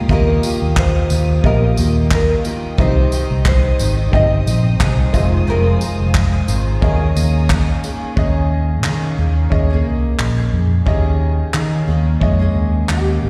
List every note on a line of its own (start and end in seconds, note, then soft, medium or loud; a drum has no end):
0.00 0.09 A#3 medium
0.00 0.10 F4 medium
0.00 0.10 G4 medium
0.00 0.13 G4 medium
0.00 2.75 A#4 medium
0.00 0.11 D#5 medium
0.00 2.75 F5 medium
0.00 5.10 G5 medium
0.00 2.75 D#6 medium
0.08 0.37 D#2 loud
0.08 0.41 D#3 medium
0.08 0.42 A#3 medium
0.08 1.09 A#3 medium
0.08 0.42 F4 loud
0.08 1.09 F4 medium
0.08 0.43 G4 loud
0.08 1.09 G4 medium
0.08 0.78 A#4 loud
0.08 1.10 D#5 medium
0.08 kick loud
0.42 1.09 D#3 medium
0.42 1.09 A#3 medium
0.42 1.09 F4 medium
0.42 1.11 G4 medium
0.42 tambourine medium
0.62 1.02 D#2 medium
0.77 1.46 C5 medium
0.77 kick loud
0.77 clap loud
1.09 1.38 D#2 medium
1.09 1.76 D#3 medium
1.09 1.76 A#3 medium
1.09 1.76 F4 medium
1.09 1.78 G4 medium
1.09 tambourine medium
1.43 1.72 A#1 loud
1.43 2.43 A#3 medium
1.43 2.43 F4 medium
1.43 2.44 G4 medium
1.43 2.13 A#4 medium
1.43 2.44 D#5 medium
1.43 kick loud
1.76 2.33 D#2 medium
1.76 2.09 D#3 medium
1.76 2.10 A#3 medium
1.76 2.10 F4 medium
1.76 2.11 G4 medium
1.76 tambourine medium
2.10 2.42 D#3 medium
2.10 2.43 A#3 medium
2.10 2.43 F4 medium
2.10 2.44 G4 medium
2.10 kick loud
2.10 clap loud
2.14 2.81 A#4 medium
2.44 2.77 D#3 medium
2.44 2.78 A#3 medium
2.44 2.78 F4 medium
2.44 2.78 G4 medium
2.44 tambourine medium
2.77 3.06 C2 loud
2.77 3.12 C3 medium
2.77 3.10 D#3 medium
2.77 3.78 C4 medium
2.77 3.10 C4 medium
2.77 3.78 D#4 medium
2.77 3.11 D#4 medium
2.77 3.12 G4 loud
2.77 3.78 G4 medium
2.77 6.78 C5 medium
2.77 3.43 C5 loud
2.77 5.11 D#5 medium
2.77 3.79 D#5 medium
2.77 6.78 D#6 loud
2.77 kick loud
3.11 3.78 D#3 medium
3.11 3.79 C4 medium
3.11 3.80 D#4 medium
3.11 3.79 G4 medium
3.11 tambourine medium
3.31 3.71 C2 loud
3.45 4.10 C5 medium
3.45 kick loud
3.45 clap loud
3.79 4.07 G#1 medium
3.79 4.46 D#3 medium
3.79 4.47 C4 medium
3.79 4.47 D#4 medium
3.79 4.47 G4 medium
3.79 tambourine medium
4.12 4.41 G1 medium
4.12 5.11 C4 medium
4.12 5.12 D#4 medium
4.12 5.13 D#5 medium
4.12 4.82 D#5 loud
4.12 5.12 G5 medium
4.12 kick loud
4.46 4.74 A#1 medium
4.46 4.79 D#3 medium
4.46 4.79 C4 medium
4.46 4.80 D#4 medium
4.46 4.81 G4 medium
4.46 tambourine medium
4.80 5.08 C2 medium
4.80 5.13 D#3 medium
4.80 5.14 C4 medium
4.80 5.14 D#4 medium
4.80 5.49 G#4 medium
4.80 kick loud
4.80 clap loud
5.13 5.42 F1 loud
5.13 5.46 D#3 medium
5.13 5.47 G#3 medium
5.13 6.22 C4 medium
5.13 5.47 C4 medium
5.13 6.22 F4 medium
5.13 5.47 F4 medium
5.13 6.22 G#4 medium
5.13 6.23 D#5 medium
5.13 6.81 F5 medium
5.13 8.14 G#5 medium
5.13 kick medium
5.13 tambourine medium
5.47 5.75 F1 loud
5.47 5.81 F2 medium
5.47 5.81 C3 medium
5.47 5.79 D#3 medium
5.47 5.80 G#3 medium
5.47 5.81 C4 loud
5.47 5.81 F4 loud
5.47 6.84 A#4 loud
5.80 6.47 D#3 medium
5.80 6.48 G#3 medium
5.80 6.48 C4 medium
5.80 6.48 F4 medium
5.80 tambourine medium
6.00 6.40 F1 loud
6.15 kick loud
6.15 clap loud
6.47 6.76 G#1 medium
6.47 6.81 D#3 medium
6.47 6.82 G#3 medium
6.47 6.82 C4 medium
6.47 6.83 F4 medium
6.47 tambourine medium
6.81 7.10 D#2 loud
6.81 7.14 D#3 medium
6.81 7.14 A#3 medium
6.81 7.81 C#4 medium
6.81 7.15 C#4 medium
6.81 7.82 G#4 medium
6.81 7.16 G#4 medium
6.81 7.46 G#4 medium
6.81 7.82 A#4 medium
6.81 8.16 C#5 medium
6.81 7.82 D#5 medium
6.81 8.16 A#5 medium
6.81 8.16 D#6 medium
6.81 kick loud
7.15 7.71 D#2 medium
7.15 7.48 D#3 medium
7.15 7.49 A#3 medium
7.15 7.49 C#4 medium
7.15 7.50 G#4 medium
7.15 tambourine medium
7.49 7.81 D#3 medium
7.49 7.82 A#3 medium
7.49 7.83 C#4 medium
7.49 7.83 G#4 medium
7.49 kick loud
7.49 clap loud
7.83 8.15 D#3 medium
7.83 8.16 A#3 medium
7.83 8.17 C#4 medium
7.83 8.17 G#4 medium
7.83 tambourine medium
8.16 8.85 D#2 loud
8.16 8.83 D#3 medium
8.16 8.84 A#3 medium
8.16 9.16 C#4 medium
8.16 8.84 C#4 medium
8.16 9.16 G#4 medium
8.16 8.84 G#4 medium
8.16 9.17 D#5 medium
8.16 kick loud
8.84 9.16 D#3 medium
8.84 9.12 D#3 loud
8.84 9.17 A#3 loud
8.84 9.17 C#4 loud
8.84 9.18 G#4 loud
8.84 clap loud
9.17 9.46 D#2 medium
9.17 9.70 D#3 medium
9.17 9.69 A#3 medium
9.17 9.69 C#4 medium
9.17 9.68 G#4 medium
9.50 9.86 D#2 medium
9.50 10.51 C#4 medium
9.50 10.51 G#4 medium
9.50 10.51 D#5 medium
9.50 kick loud
9.69 10.38 D#3 medium
9.69 10.38 A#3 medium
9.69 10.37 C#4 medium
9.69 10.35 G#4 medium
9.86 10.13 C2 medium
10.19 10.47 A#1 medium
10.19 clap loud
10.37 10.85 A#3 medium
10.37 10.85 C#4 soft
10.37 10.86 G#4 medium
10.53 10.81 F2 medium
10.85 11.42 D#2 medium
10.85 11.52 D#3 medium
10.85 11.53 A#3 medium
10.85 11.86 C#4 medium
10.85 11.53 C#4 medium
10.85 10.94 G4 medium
10.85 11.53 G#4 medium
10.85 11.87 D#5 medium
10.85 kick loud
10.93 11.90 G#4 medium
11.53 11.86 D#3 medium
11.53 11.82 D#3 medium
11.53 11.87 A#3 medium
11.53 11.87 C#4 medium
11.53 11.88 G#4 loud
11.53 clap medium
11.87 12.15 D#2 medium
11.87 12.39 D#3 medium
11.87 12.39 A#3 medium
11.87 12.38 C#4 medium
11.87 12.38 G#4 medium
12.20 12.49 F2 medium
12.20 13.21 G#3 medium
12.20 13.20 C#4 medium
12.20 13.22 D#5 medium
12.20 kick loud
12.39 13.08 D#3 medium
12.39 13.08 A#3 medium
12.39 13.07 C#4 medium
12.39 13.07 G#4 medium
12.55 12.83 D#2 medium
12.89 13.16 D#2 medium
12.89 13.29 G4 medium
12.89 clap loud
13.08 13.29 A#3 soft
13.08 13.29 C#4 soft
13.23 13.29 G#1 medium